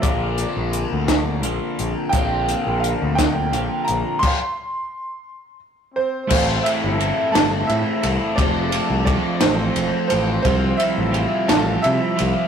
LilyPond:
<<
  \new Staff \with { instrumentName = "Upright piano" } { \time 6/8 \key bes \lydian \tempo 4. = 58 d''2 r4 | g''4 f''8 g''4 bes''8 | c'''2 r8 c''8 | c''8 e''4 a''8 e''4 |
d''4 d''8 c''4 c''8 | c''8 e''4 a''8 e''4 | }
  \new Staff \with { instrumentName = "Overdriven electric guitar" } { \time 6/8 \key bes \lydian <f bes d' f'>2. | <f bes d' f'>2. | r2. | <c' e' a'>8 <c' e' a'>8 <c' e' a'>8 <c' e' a'>4 <c' e' a'>8 |
<c' f' a'>8 <c' f' a'>8 <c' f' a'>8 <c' f' a'>4 <c' f' a'>8 | <g c' f'>8 <g c' f'>8 <g c' f'>8 <g c' f'>4 <g c' f'>8 | }
  \new Staff \with { instrumentName = "Trumpet" } { \time 6/8 \key bes \lydian r2. | r2. | r2 r8 c'8 | c'8 e'4 a'8 e'4 |
d'4 d'8 c'4 c'8 | c'8 e'4 a'8 e'4 | }
  \new Staff \with { instrumentName = "Clean electric guitar" } { \time 6/8 \key bes \lydian <bes, d bes c' f'>2 <bes, d bes c' f'>4 | <bes, d bes c' f'>2 <bes, d bes c' f'>4 | r2. | <a, e a c' e'>8 <a, e a c' e'>8 <a, e a c' e'>8 <a, e a c' e'>4 <a, e a c' e'>8 |
<f a c' e'>8 <f a c' e'>8 <f a c' e'>8 <f a c'>4 <f a c' e'>8 | <c f g c' f'>8 <c f g c' f'>8 <c f g c' f'>8 <c f g c' f'>4 <c f g c' f'>8 | }
  \new Staff \with { instrumentName = "Fingered electric bass" } { \clef bass \time 6/8 \key bes \lydian bes,,8. bes,,8 d,8. bes,,16 r16 bes,,16 r16 | bes,,8. bes,,8 d,8. bes,,16 r16 bes,,16 r16 | r2. | a,,8 r16 g,,8 r16 g,,8 a,16 r16 c,16 r16 |
f,,8. c,8 r16 a,,8 e,,16 r16 a,,8 | c,8 r16 a,,8 r16 a,,8 c16 r16 c,16 r16 | }
  \new DrumStaff \with { instrumentName = "Drums" } \drummode { \time 6/8 <hh bd>8 hh8 hh8 <hh bd sn>8 hh8 hh8 | <hh bd>8 hh8 hh8 <hh bd sn>8 hh8 hh8 | <cymc bd>4. r4. | <cymc bd>8 cymr8 cymr8 <cymr sn>8 cymr8 cymr8 |
<bd cymr>8 cymr8 <bd cymr>8 <cymr sn>8 cymr8 cymr8 | <bd cymr>8 cymr8 cymr8 <cymr sn>8 cymr8 cymr8 | }
>>